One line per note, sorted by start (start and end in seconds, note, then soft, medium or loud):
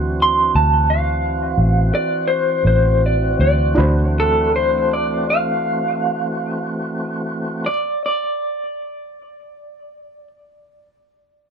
0.00 0.52 D2 medium
0.00 3.74 E3 medium
0.00 3.74 C4 medium
0.00 3.73 D4 soft
0.00 3.74 F#4 medium
0.00 3.74 F#4 soft
0.00 3.75 C5 medium
0.22 0.55 C6 medium
0.55 1.54 D2 medium
0.55 0.88 A5 medium
0.90 1.91 F5 medium
1.58 1.90 A1 medium
1.95 2.29 D5 medium
2.28 2.64 C5 medium
2.65 3.36 A1 medium
2.65 3.02 C5 medium
3.06 3.40 D5 medium
3.39 3.75 D2 medium
3.39 3.77 D5 medium
3.75 7.70 D2 medium
3.75 7.68 E3 medium
3.75 7.69 A3 medium
3.75 7.69 C4 medium
3.75 7.67 D4 medium
3.75 7.69 F#4 medium
3.75 7.69 F#4 soft
3.75 7.71 B5 soft
3.79 7.72 C5 medium
4.20 4.55 A4 medium
4.56 4.93 C5 medium
4.93 5.30 D5 medium
5.30 7.59 F5 medium
7.66 8.03 D5 medium
8.06 10.27 D5 medium